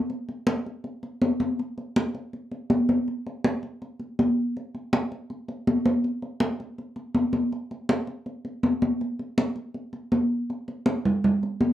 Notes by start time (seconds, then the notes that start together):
0.10 high conga
0.29 high conga
0.47 high conga
0.66 high conga
0.84 high conga
1.03 high conga
1.22 high conga
1.40 high conga
1.59 high conga
1.78 high conga
1.96 high conga
2.15 high conga
2.33 high conga
2.51 high conga
2.70 high conga
2.89 high conga
3.08 high conga
3.27 high conga
3.45 high conga
3.63 high conga
3.82 high conga
4.00 high conga
4.19 high conga
4.57 high conga
4.74 high conga
4.93 high conga
5.12 high conga
5.30 high conga
5.48 high conga
5.67 high conga
5.85 high conga
6.04 high conga
6.22 high conga
6.40 high conga
6.60 high conga
6.78 high conga
6.96 high conga
7.14 high conga
7.33 high conga
7.52 high conga
7.71 high conga
7.89 high conga
8.07 high conga
8.26 high conga
8.45 high conga
8.63 high conga
8.82 high conga
9.01 high conga
9.19 high conga
9.38 high conga
9.56 high conga
9.75 high conga
9.93 high conga
10.12 high conga
10.50 high conga
10.68 high conga
10.86 high conga
11.05 high conga, low conga
11.24 high conga, low conga
11.43 high conga
11.61 high conga